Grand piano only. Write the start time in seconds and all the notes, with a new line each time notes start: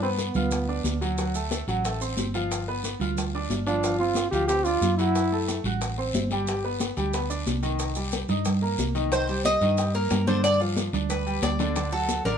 0.02 B3 B4 B5
0.36 F4 F5 F6
0.69 D4 D5 D6
1.01 F#3 F#4 F#5
1.18 F#3 F#4 F#5
1.35 A3 A4 A5
1.68 F#3 F#4 F#5
1.85 A3 A4 A5
2.01 C4 C5 C6
2.34 F3 F4 F5
2.68 B3 B4 B5
3.01 F4 F5 F6
3.35 D4 D5 D6
3.67 F3 F4 F5
3.84 F3 F4 F5
4.00 C4 C5 C6
4.33 F3 F4 F5
4.50 C4 C5 C6
4.66 D4 D5 D6
4.99 F#3 F#4 F#5
5.32 A3 A4 A5
5.65 F#4 F#5 F#6
5.98 C4 C5 C6
6.31 G3 G4 G5
6.48 G3 G4 G5
6.64 B3 B4 B5
6.97 G3 G4 G5
7.13 B3 B4 B5
7.30 D4 D5 D6
7.63 D#3 D#4 D#5
7.96 G3 G4 G5
8.29 D#4 D#5 D#6
8.62 A#3 A#4 A#5
8.95 D#3 D#4 D#5
9.12 D#3 D#4 D#5
9.29 G3 G4 G5
9.62 D#3 D#4 D#5
9.78 G3 G4 G5
9.95 A#3 A#4 A#5
10.28 D3 D4 D5
10.60 F3 F4 F5
10.94 D4 D5 D6
11.27 G3 G4 G5
11.60 D3 D4 D5
11.76 D3 D4 D5
11.92 F#3 F#4 F#5
12.26 D3 D4 D5